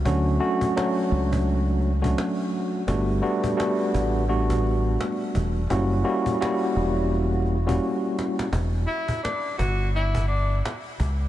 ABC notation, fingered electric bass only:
X:1
M:4/4
L:1/8
Q:"Swing 16ths" 1/4=85
K:Edor
V:1 name="Fingered electric bass" clef=bass
D,, z2 C,,3 z2 | G,,, z2 A,,,3 z E,,, | F,,, z2 E,,,3 z2 | E,,, z2 G,,,3 z C,, |]